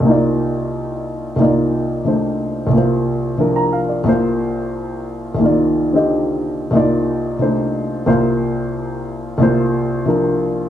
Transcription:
0.00 1.35 C2 soft
0.00 1.36 C3 soft
0.05 1.37 A#3 soft
0.05 1.38 D#4 soft
0.05 1.39 F4 soft
0.11 1.40 D5 soft
1.36 2.65 C2 soft
1.36 2.03 C3 soft
1.36 2.70 A#3 soft
1.36 2.73 D#4 soft
1.41 2.74 F4 soft
1.41 2.74 D5 soft
2.04 2.68 C3 soft
2.04 2.73 A3 soft
2.04 2.73 D4 soft
2.04 2.74 C5 soft
2.67 4.03 C2 soft
2.67 3.36 C3 soft
2.72 4.05 A#3 soft
2.72 4.06 F4 soft
2.78 4.07 C5 soft
3.38 4.03 C3 soft
3.38 4.06 F3 soft
3.38 4.06 D4 soft
3.38 4.07 A#4 soft
3.56 3.79 A#5 soft
3.73 3.98 F5 soft
3.89 4.13 D5 soft
4.04 5.33 C2 soft
4.04 5.35 C3 soft
4.04 5.37 A#3 soft
4.04 5.41 F4 soft
4.09 5.41 C5 soft
5.35 6.69 C2 soft
5.35 6.71 C3 soft
5.39 6.74 D#3 soft
5.39 6.72 A#3 soft
5.43 5.93 F4 soft
5.43 6.75 D5 soft
5.93 6.72 D3 soft
5.93 6.72 C4 soft
5.93 6.73 F4 soft
5.93 6.73 G4 soft
5.93 6.74 D#5 soft
6.71 8.05 C2 soft
6.71 7.37 C3 soft
6.71 8.05 A#3 soft
6.71 8.08 D#4 soft
6.75 8.06 F4 soft
6.75 8.09 D5 medium
7.39 8.05 C3 soft
7.39 8.07 A3 soft
7.39 8.08 D4 soft
7.39 8.06 C5 soft
8.06 9.36 C2 soft
8.06 9.37 C3 soft
8.06 9.39 A#3 soft
8.06 9.40 F4 soft
8.06 9.41 C5 medium
9.38 10.69 C2 soft
9.38 10.04 C3 soft
9.38 10.69 A#3 soft
9.38 10.69 F4 soft
9.43 10.69 C5 medium
10.05 10.69 C3 soft
10.05 10.69 F3 soft
10.05 10.69 D4 soft
10.05 10.69 A#4 soft

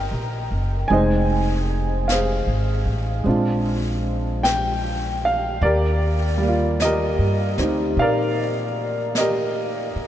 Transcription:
0.00 0.89 A#3 soft
0.00 0.89 C4 soft
0.00 0.90 D#4 soft
0.00 0.92 F4 soft
0.00 0.91 A#4 soft
0.00 0.91 D#5 soft
0.00 0.93 G5 medium
0.00 0.91 A#5 medium
0.11 0.48 A#1 soft
0.51 0.87 F#1 soft
0.88 2.43 F1 medium
0.88 3.22 G#3 soft
0.88 3.24 C4 soft
0.88 3.26 D#4 soft
0.88 2.10 G#4 soft
0.88 2.10 G#5 medium
0.88 brush sweep soft
0.93 2.10 C5 soft
0.93 3.23 D#5 soft
2.08 3.24 G#4 soft
2.08 3.23 C5 soft
2.08 3.22 F5 soft
2.08 brush sweep soft
2.08 snare soft
2.08 hi-hat pedal soft
2.47 2.83 G#1 soft
2.86 3.22 A1 medium
3.24 5.58 A#1 medium
3.24 5.61 G#3 soft
3.24 5.62 C4 soft
3.24 5.62 D4 soft
3.24 brush sweep soft
3.29 5.63 F4 soft
4.43 5.20 G5 medium
4.43 brush sweep soft
4.43 snare soft
4.43 hi-hat pedal soft
5.25 5.63 F5 medium
5.61 7.15 D#2 medium
5.61 6.83 G4 soft
5.61 6.83 A#4 soft
5.61 6.83 D5 medium
5.61 brush sweep soft
6.38 10.07 G3 soft
6.38 10.07 A#3 soft
6.49 10.07 F4 soft
6.80 7.95 D#5 medium
6.80 brush sweep soft
6.80 snare soft
6.80 hi-hat pedal soft
6.84 7.60 G4 soft
6.84 8.00 A#4 medium
7.19 7.55 G2 soft
7.58 7.95 D2 medium
7.58 10.07 C4 soft
7.58 10.07 D#4 soft
7.58 9.18 G4 soft
7.58 snare soft
7.97 9.91 A#2 medium
7.97 9.20 F5 medium
7.97 brush sweep soft
8.02 9.18 A#4 soft
8.02 10.07 D5 medium
9.15 10.07 D#5 medium
9.15 brush sweep soft
9.15 snare soft
9.15 hi-hat pedal soft
9.19 10.07 G4 soft
9.19 10.07 A#4 soft
9.96 muted upright bass stroke soft

